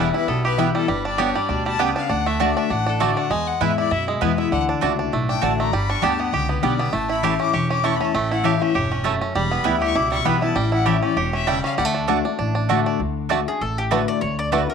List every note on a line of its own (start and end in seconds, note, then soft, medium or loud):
0.00 0.25 E2 medium
0.00 0.13 E3 medium
0.00 0.13 G3 medium
0.00 0.41 G3 medium
0.00 0.14 B3 loud
0.00 0.28 B3 medium
0.00 0.12 E4 loud
0.00 0.13 E4 medium
0.00 0.15 G4 medium
0.00 0.13 G#4 medium
0.14 0.28 B3 soft
0.14 0.27 E4 medium
0.14 0.56 E4 medium
0.14 0.30 B4 loud
0.27 0.70 B1 medium
0.27 0.86 B2 medium
0.27 0.72 B3 medium
0.27 0.43 A4 medium
0.44 0.86 G4 medium
0.44 0.60 B4 loud
0.57 0.87 E3 medium
0.57 0.87 G3 medium
0.57 0.68 B3 medium
0.57 0.88 B3 loud
0.57 0.89 E4 medium
0.57 0.68 E4 loud
0.57 0.88 E4 loud
0.57 0.75 G4 medium
0.57 0.68 B4 loud
0.57 0.69 G5 loud
0.75 0.87 G3 medium
0.75 0.90 A4 medium
0.88 1.31 G1 loud
0.88 1.47 G2 loud
0.88 1.32 G3 medium
0.88 1.05 B4 medium
1.05 1.47 D4 medium
1.05 1.21 D5 loud
1.18 1.35 G3 medium
1.18 1.28 B3 loud
1.18 1.35 B3 medium
1.18 1.35 D4 medium
1.18 1.62 G4 medium
1.18 1.29 G4 loud
1.18 1.34 G4 loud
1.18 1.37 C#5 loud
1.18 1.29 D5 loud
1.18 1.29 G5 loud
1.35 1.65 G3 medium
1.35 1.49 G4 medium
1.35 1.65 D5 loud
1.49 1.92 D2 medium
1.49 1.78 B2 medium
1.49 1.93 D4 medium
1.66 2.07 G3 medium
1.66 1.82 A5 loud
1.79 2.09 C#3 loud
1.79 1.89 B3 loud
1.79 2.09 B3 medium
1.79 1.89 G4 medium
1.79 1.89 D5 medium
1.79 1.90 G5 loud
1.79 1.96 G5 loud
1.96 2.08 D4 medium
1.96 2.12 F5 loud
2.09 2.52 D2 loud
2.09 2.38 D3 medium
2.09 2.39 D4 medium
2.09 2.28 F#5 loud
2.26 2.68 A3 medium
2.26 2.42 E5 loud
2.40 2.69 D3 medium
2.40 2.50 A3 loud
2.40 2.69 A3 medium
2.40 2.55 D4 medium
2.40 2.69 D4 loud
2.40 2.50 F#4 loud
2.40 2.70 F#4 loud
2.40 2.50 D5 loud
2.40 2.59 D5 medium
2.40 2.50 A5 loud
2.57 2.69 D4 medium
2.57 2.73 E5 loud
2.70 3.13 A1 medium
2.70 3.28 A2 medium
2.70 2.85 D4 medium
2.70 2.90 F#5 loud
2.86 3.16 D4 medium
2.86 3.03 A4 medium
3.00 3.29 D3 medium
3.00 3.10 A3 medium
3.00 3.30 A3 medium
3.00 3.30 A3 loud
3.00 3.30 D4 loud
3.00 3.10 F#4 medium
3.00 3.30 F#4 loud
3.00 3.10 D5 loud
3.00 3.19 D5 medium
3.00 3.10 A5 loud
3.17 3.31 D4 medium
3.17 3.32 F#5 loud
3.30 3.52 E2 loud
3.30 3.89 E2 medium
3.30 3.74 G#3 medium
3.30 3.49 G#5 loud
3.47 3.63 F#5 loud
3.61 3.87 G#2 medium
3.61 3.90 E3 medium
3.61 3.90 G#3 medium
3.61 3.71 B3 medium
3.61 3.91 B3 medium
3.61 3.71 E4 loud
3.61 3.77 E4 medium
3.61 3.91 E4 loud
3.61 3.71 B4 loud
3.61 3.77 E5 medium
3.61 3.71 G#5 loud
3.77 3.90 E4 medium
3.77 3.93 D5 loud
3.91 4.17 F#2 medium
3.91 4.49 B2 medium
3.91 4.35 E4 medium
3.91 4.08 E5 loud
4.08 4.49 G#3 medium
4.08 4.23 G#4 medium
4.21 4.47 E2 medium
4.21 4.50 E3 loud
4.21 4.51 G#3 medium
4.21 4.31 B3 medium
4.21 4.52 B3 medium
4.21 4.51 B3 medium
4.21 4.31 E4 medium
4.21 4.51 E4 loud
4.21 4.31 B4 loud
4.21 4.37 B4 medium
4.21 4.31 G#5 medium
4.38 4.52 E4 medium
4.38 4.51 E5 loud
4.52 4.73 D2 medium
4.52 4.80 D3 medium
4.52 4.95 D3 medium
4.52 4.62 F#5 loud
4.69 4.81 D4 medium
4.81 5.08 C#2 medium
4.81 5.11 D3 loud
4.81 4.91 A3 medium
4.81 5.11 A3 medium
4.81 4.98 D4 medium
4.81 5.12 D4 loud
4.81 4.92 F#4 loud
4.81 5.12 F#4 loud
4.81 4.92 D5 loud
4.81 4.92 A5 loud
4.99 5.28 D4 medium
5.12 5.38 B1 medium
5.12 5.70 A2 medium
5.12 5.56 A3 medium
5.29 5.42 D4 medium
5.29 5.44 G5 loud
5.41 5.68 A1 medium
5.41 5.71 D3 medium
5.41 5.52 A3 medium
5.41 5.71 A3 loud
5.41 5.71 D4 medium
5.41 5.73 D4 medium
5.41 5.52 F#4 medium
5.41 5.72 F#4 medium
5.41 5.52 D5 medium
5.41 5.52 A5 medium
5.41 5.59 A5 loud
5.59 5.73 A3 medium
5.59 5.75 A#5 loud
5.72 5.93 G1 loud
5.72 6.30 G2 medium
5.72 6.16 G3 medium
5.72 5.91 B5 loud
5.89 6.30 D4 medium
5.89 6.05 C#6 loud
6.02 6.28 D2 medium
6.02 6.31 G3 medium
6.02 6.12 B3 loud
6.02 6.31 B3 medium
6.02 6.32 D4 medium
6.02 6.12 G4 medium
6.02 6.32 G4 medium
6.02 6.32 G4 loud
6.02 6.13 D5 loud
6.02 6.13 G5 loud
6.02 6.21 A5 loud
6.20 6.48 B3 medium
6.20 6.34 F#5 loud
6.33 6.59 C#2 medium
6.33 6.91 D3 medium
6.33 6.77 G4 medium
6.33 6.49 G5 loud
6.49 6.78 B3 medium
6.49 6.65 B4 medium
6.62 6.89 B1 medium
6.62 6.79 G3 medium
6.62 6.92 G3 medium
6.62 6.73 B3 medium
6.62 6.79 B3 medium
6.62 6.79 D4 loud
6.62 6.73 G4 medium
6.62 6.78 G4 loud
6.62 6.81 D5 medium
6.62 6.73 D5 loud
6.62 6.73 G5 medium
6.79 6.93 B3 medium
6.79 6.94 D4 soft
6.79 6.93 G4 medium
6.79 6.96 G5 medium
6.92 7.36 A1 loud
6.92 7.51 A2 medium
6.92 7.56 A3 medium
6.92 7.09 A5 loud
7.09 8.31 E4 medium
7.09 7.25 B5 loud
7.22 7.52 E3 medium
7.22 7.52 A3 medium
7.22 7.33 A3 loud
7.22 7.53 C#4 medium
7.22 7.33 E4 loud
7.22 7.53 E4 loud
7.22 7.52 G4 medium
7.22 7.33 C#5 loud
7.22 7.34 A5 loud
7.22 7.39 C6 loud
7.40 7.69 C#4 medium
7.40 7.56 D6 loud
7.53 7.96 E1 medium
7.53 8.11 E2 medium
7.53 7.97 G4 medium
7.53 7.70 C#6 loud
7.70 7.99 C#4 medium
7.70 7.86 D6 loud
7.84 8.13 E3 medium
7.84 7.94 A3 medium
7.84 8.13 A3 medium
7.84 8.13 C#4 loud
7.84 7.94 E4 loud
7.84 8.13 E4 loud
7.84 7.94 C#5 medium
7.84 7.94 A5 loud
7.84 7.97 C#6 loud
7.96 8.06 B5 medium
8.01 8.42 C#4 medium
8.05 8.16 A5 medium
8.14 8.57 A1 medium
8.14 8.72 A2 medium
8.14 8.58 A3 medium
8.14 8.30 G5 medium
8.31 9.65 E4 medium
8.31 8.47 F#5 loud
8.44 8.73 E3 medium
8.44 8.54 A3 medium
8.44 8.73 A3 medium
8.44 8.73 C#4 medium
8.44 8.54 E4 medium
8.44 8.74 E4 loud
8.44 8.74 G4 medium
8.44 8.54 C#5 loud
8.44 8.63 F5 medium
8.44 8.54 A5 loud
8.61 8.90 C#4 medium
8.61 8.76 E5 loud
8.74 9.17 E1 medium
8.74 9.03 G2 medium
8.74 9.18 G4 medium
8.74 9.05 C#5 medium
8.92 9.20 C#4 medium
9.04 9.34 F#2 medium
9.04 9.14 A3 medium
9.04 9.35 A3 medium
9.04 9.14 E4 medium
9.04 9.15 C#5 loud
9.04 9.15 A5 medium
9.21 9.35 C#4 medium
9.35 9.56 E1 medium
9.35 9.93 E2 medium
9.35 10.11 G3 medium
9.35 9.79 B5 loud
9.51 9.93 B3 medium
9.64 9.91 D2 medium
9.64 9.94 E3 medium
9.64 9.94 G3 medium
9.64 9.74 B3 loud
9.64 9.94 B3 loud
9.64 9.75 E4 loud
9.64 9.94 E4 medium
9.64 9.95 E4 loud
9.64 9.75 B4 medium
9.64 9.75 G5 loud
9.82 10.23 G4 medium
9.82 9.97 C#6 loud
9.95 10.21 C#2 medium
9.95 10.53 B2 loud
9.95 10.39 E4 medium
9.95 10.11 D6 loud
10.12 10.53 G3 medium
10.12 10.27 C#6 loud
10.24 10.51 B1 medium
10.24 10.41 E3 medium
10.24 10.41 G3 medium
10.24 10.35 B3 medium
10.24 10.56 B3 medium
10.24 10.42 B3 loud
10.24 10.35 E4 loud
10.24 10.41 E4 medium
10.24 10.36 B4 loud
10.24 10.36 G5 loud
10.24 10.42 B5 loud
10.42 10.56 B3 soft
10.42 10.55 E4 medium
10.42 10.56 E4 medium
10.42 10.57 A5 loud
10.56 10.99 A1 loud
10.56 11.14 A2 medium
10.56 11.00 G3 medium
10.56 10.73 G5 loud
10.72 11.14 E4 medium
10.72 10.89 F#5 loud
10.86 11.02 E3 medium
10.86 11.03 G3 medium
10.86 10.96 A3 loud
10.86 11.03 C#4 loud
10.86 10.96 E4 medium
10.86 11.02 E4 loud
10.86 11.16 G4 medium
10.86 10.96 C#5 loud
10.86 11.02 E5 loud
10.86 10.96 G5 loud
11.03 11.32 C#4 medium
11.03 11.17 C#4 medium
11.03 11.16 E4 medium
11.03 11.19 D5 loud
11.16 11.59 E1 medium
11.16 11.46 B2 medium
11.16 11.61 G4 medium
11.16 11.33 C#5 loud
11.33 11.63 C#4 medium
11.33 11.49 E5 loud
11.47 11.76 C#3 medium
11.47 11.77 G3 medium
11.47 11.57 A3 medium
11.47 11.57 E4 loud
11.47 11.57 C#5 medium
11.47 11.63 G5 loud
11.47 11.57 G5 loud
11.64 11.78 C#4 medium
11.64 11.77 F5 loud
11.77 12.20 D2 medium
11.77 12.07 D3 medium
11.77 11.85 G3 medium
11.77 11.87 F#5 loud
11.85 12.08 A3 medium
11.94 12.07 D4 medium
12.08 12.24 D3 medium
12.08 12.18 A3 loud
12.08 12.25 A3 loud
12.08 12.24 D4 medium
12.08 12.25 D4 medium
12.08 12.18 F#4 loud
12.08 12.24 F#4 loud
12.08 12.18 D5 loud
12.08 12.18 A5 loud
12.25 12.38 D4 medium
12.25 12.39 D4 medium
12.25 12.38 F#4 medium
12.39 12.82 A1 medium
12.39 12.97 A2 loud
12.39 12.54 D4 medium
12.55 12.85 D4 medium
12.69 12.98 D3 loud
12.69 12.79 A3 medium
12.69 13.00 A3 medium
12.69 12.99 A3 loud
12.69 12.99 D4 loud
12.69 12.79 F#4 loud
12.69 12.99 F#4 loud
12.69 12.79 D5 loud
12.69 12.79 A5 loud
12.86 13.00 D4 medium
13.00 13.42 D2 medium
13.00 13.29 D3 medium
13.29 13.46 D3 medium
13.29 13.40 A3 medium
13.29 13.38 A3 medium
13.29 13.47 A3 loud
13.29 13.33 D4 medium
13.29 13.47 D4 medium
13.29 13.40 F#4 loud
13.29 13.46 F#4 medium
13.29 13.40 D5 medium
13.29 13.40 A5 loud
13.47 13.61 D4 soft
13.47 13.60 F#4 medium
13.47 13.61 G#4 medium
13.61 14.04 A1 medium
13.61 14.19 A2 medium
13.61 13.77 A4 medium
13.78 13.91 G4 medium
13.91 14.20 D3 medium
13.91 14.01 A3 medium
13.91 13.99 A3 medium
13.91 14.21 A3 loud
13.91 13.94 D4 medium
13.91 14.21 D4 medium
13.91 14.01 F#4 loud
13.91 14.21 F#4 loud
13.91 14.08 B4 medium
13.91 14.01 D5 loud
13.91 14.01 A5 loud
14.08 14.21 D5 loud
14.21 14.65 D2 loud
14.21 14.50 D3 medium
14.21 14.38 C#5 medium
14.39 14.52 D5 loud
14.51 14.68 D3 medium
14.51 14.68 A3 medium
14.51 14.62 A3 loud
14.51 14.60 A3 medium
14.51 14.68 D4 loud
14.51 14.55 D4 medium
14.51 14.62 F#4 medium
14.51 14.67 F#4 medium
14.51 14.69 B4 medium
14.51 14.62 D5 loud
14.51 14.63 A5 loud
14.68 14.74 D4 soft
14.68 14.74 F#4 medium
14.68 14.74 A#4 medium